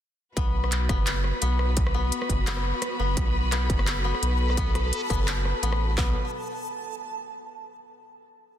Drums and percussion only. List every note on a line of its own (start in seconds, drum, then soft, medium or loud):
0.37 kick loud
0.37 closed hi-hat medium
0.64 cross-stick medium
0.72 clap medium
0.72 closed hi-hat medium
0.89 kick loud
0.89 cross-stick medium
0.89 closed hi-hat soft
1.07 clap loud
1.07 closed hi-hat medium
1.24 cross-stick medium
1.42 closed hi-hat medium
1.59 cross-stick medium
1.77 kick loud
1.77 closed hi-hat medium
1.87 cross-stick medium
2.12 closed hi-hat medium
2.22 cross-stick medium
2.29 kick medium
2.29 closed hi-hat soft
2.47 clap loud
2.47 closed hi-hat medium
2.57 cross-stick medium
2.82 cross-stick medium
2.82 closed hi-hat medium
3.17 kick loud
3.17 cross-stick medium
3.17 closed hi-hat medium
3.52 cross-stick soft
3.52 clap medium
3.52 closed hi-hat medium
3.70 kick loud
3.70 closed hi-hat soft
3.79 cross-stick medium
3.87 clap loud
3.87 closed hi-hat medium
4.15 cross-stick medium
4.23 closed hi-hat medium
4.50 cross-stick soft
4.57 kick loud
4.57 closed hi-hat medium
4.75 cross-stick medium
4.75 closed hi-hat soft
4.93 closed hi-hat medium
5.10 kick medium
5.10 cross-stick soft
5.10 closed hi-hat soft
5.28 clap loud
5.28 closed hi-hat medium
5.45 cross-stick medium
5.63 closed hi-hat medium
5.72 cross-stick medium
5.98 kick loud
5.98 clap medium